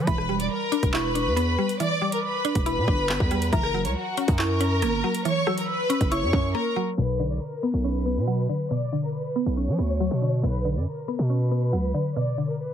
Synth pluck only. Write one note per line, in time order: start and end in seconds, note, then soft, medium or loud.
0.07 1.15 E3 loud
0.29 1.37 G3 medium
0.72 1.14 D4 loud
0.93 2.01 E4 medium
1.15 2.23 D4 medium
1.36 2.45 B3 medium
1.58 2.00 G3 medium
1.80 2.88 E3 medium
2.02 3.09 G3 medium
2.45 2.87 D4 loud
2.66 3.52 E4 medium
2.88 3.53 D4 medium
3.10 3.53 B3 medium
3.31 3.53 G3 medium
3.53 4.61 E3 medium
3.74 4.82 F#3 medium
4.17 4.59 C#4 loud
4.39 5.47 E4 medium
4.61 5.68 C#4 medium
4.82 5.90 A#3 loud
5.04 5.46 F#3 medium
5.25 6.33 E3 medium
5.47 6.55 F#3 medium
5.90 6.32 C#4 loud
6.12 6.98 E4 medium
6.33 6.98 C#4 medium
6.55 6.98 A#3 medium
6.76 6.98 F#3 medium
6.98 8.06 B2 medium
7.20 8.27 D3 medium
7.63 8.05 B3 loud
7.84 8.92 C#4 medium
8.06 9.14 B3 medium
8.27 9.35 F#3 loud
8.49 8.91 D3 medium
8.71 9.79 B2 medium
8.92 10.00 D3 medium
9.36 9.77 B3 loud
9.57 10.65 C#4 medium
9.78 10.86 B3 medium
10.00 11.08 F#3 loud
10.22 10.64 D3 medium
10.44 11.51 B2 medium
10.65 11.73 D3 medium
11.08 11.50 B3 loud
11.30 12.38 C#4 medium
11.51 12.59 B3 medium
11.73 12.74 F#3 medium
11.94 12.37 D3 medium
12.16 12.74 B2 medium
12.38 12.74 D3 medium